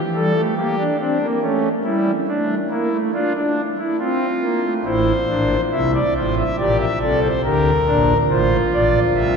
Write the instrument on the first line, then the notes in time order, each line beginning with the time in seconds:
pipe organ
0.15 G3 A4
0.36 A3
0.57 A#3 G4
0.79 D4
1.00 C4 D4
1.22 A#3
1.42 A3 C#4
1.85 G3 E4
2.28 A3 D4
2.70 A#3 E4
2.92 A3
3.14 D4 F4
3.35 D4
3.78 E4
3.99 C4 F4
4.42 A#3
4.64 A3
4.85 A1 A2 E4 C5
5.29 A#1 A#2 D4
5.72 C2 C3 E4 E5
5.95 D5
6.16 A1 A2 F4 C5
6.38 E5
6.59 A#1 A#2 G4 D5
6.80 E5
7.02 C2 C3 A4 D5
7.23 C5
7.44 D2 D3 G4 A#4
7.87 A#1 A#2 D4
8.30 A1 A2 F4 C5
8.73 A#1 A#2 D5
9.16 C2 C3 E5